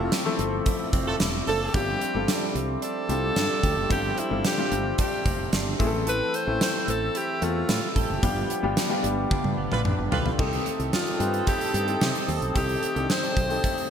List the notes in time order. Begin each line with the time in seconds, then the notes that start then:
Already playing: F3 C4 E4 G4 A4 E5 D6 E6
0.00 A3 C4 E4 F4 A4
0.04 F4
0.12 E4, snare, closed hi-hat, tambourine
0.25 F3 A3 C4 E4 A4
0.39 G1 C4, closed hi-hat
0.66 E4, kick, closed hi-hat
0.93 F1 C4, kick, closed hi-hat
1.07 A3 F4 A4
1.20 E1 E4, snare, closed hi-hat, tambourine
1.47 F#1 F3 D4 A4, open hi-hat
1.74 G1 F3 G3 C4 D4 F4 G4 C6, kick, closed hi-hat
2.01 C4, closed hi-hat
2.14 G1 G3 C4 D4 F4 A4
2.28 D4, snare, closed hi-hat, tambourine
2.55 C2 C4, closed hi-hat
2.82 D4 A4, closed hi-hat
3.09 C2 G3 C4 D4 F4 G4, closed hi-hat
3.36 G2 D4, snare, closed hi-hat, tambourine
3.63 D2 G4, kick, closed hi-hat
3.77 F#1
3.89 G1 F3 G3 C4 D4 F4 G4 A4, kick, closed hi-hat
4.18 C4 E4, closed hi-hat
4.30 G1 G3 C4 D4 F4 A4
4.44 D4 G4, snare, closed hi-hat, tambourine
4.58 G3 C4 D4 F4 G4
4.71 G1 C4, closed hi-hat
4.98 D4 G4, kick, closed hi-hat
5.26 F1 C4, kick, closed hi-hat
5.53 G1 D4, snare, closed hi-hat, tambourine
5.79 A1 E3 A3 C4 E4 G#4 A4 E6, kick, closed hi-hat
5.87 A4
6.07 E3 A4 B4, closed hi-hat
6.34 C4 C5, closed hi-hat
6.47 A1 A3 C4 E4 A4
6.61 E4 C5, snare, closed hi-hat, tambourine
6.88 A1 C4 A4, closed hi-hat
7.15 E4 G4, closed hi-hat
7.41 E2 A3 C4 F4 A4 E5, closed hi-hat
7.69 A2 E4, snare, closed hi-hat, tambourine
7.90 A4
7.96 A1 G4 A4, kick, closed hi-hat
8.10 F#1
8.23 G1 F3 G3 B3 D4 F4 G4 B5 D6, kick, closed hi-hat
8.50 B3, closed hi-hat
8.63 G1 G3 B3 D4 F4 G4
8.77 D4, snare, closed hi-hat, tambourine
8.90 G3 B3 D4 F4 G4
9.04 G1 B3, closed hi-hat
9.31 D4, kick, high tom
9.44 G2, high tom
9.58 G1 B3
9.72 A1 F4 G4 B4, mid tom
9.85 D4 B4, mid tom
9.99 G1
10.12 B1 F4 G4 A4 B4, floor tom
10.25 A3 F4, floor tom
10.38 C2 D#3 C4 D#4 G4 A4 G5 A5 D#6, kick, crash
10.53 closed hi-hat
10.66 A3, closed hi-hat
10.79 C2, closed hi-hat
10.93 F4 G4, snare, tambourine
11.07 closed hi-hat
11.19 G2 C4 D#4 G4 B4, closed hi-hat
11.34 closed hi-hat
11.47 A3 G4, kick, closed hi-hat
11.61 closed hi-hat
11.74 G2 C4, closed hi-hat
11.87 C4 D#4 G4 A4, closed hi-hat
12.01 C3 G4, snare, tambourine
12.15 closed hi-hat
12.28 D#2 C4, open hi-hat
12.42 B1, closed hi-hat
12.54 C2 D#3 C4 D#4 G4 A4, kick, closed hi-hat
12.69 closed hi-hat
12.82 A3, closed hi-hat
12.95 C2 C4 D4 G4 A4, closed hi-hat
13.02 D#4
13.09 G4 C5, snare, tambourine
13.23 closed hi-hat
13.36 B1 C4, kick, closed hi-hat
13.49 C4 D#4 G4 A4, closed hi-hat
13.64 A3, kick, closed hi-hat
13.78 closed hi-hat